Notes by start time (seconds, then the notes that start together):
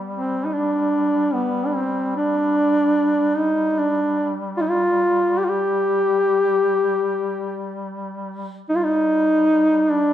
Already playing: G3
0.13 C4
0.45 D#4
0.53 D4
1.34 B3
1.66 D4
1.75 C4
2.17 D4
3.36 D#4
3.78 D4
4.57 F4
4.61 D#4
4.70 F4
5.38 G4
5.44 F4
5.49 G4
8.69 G3 D#4
8.75 F4
8.84 D#4
9.91 D4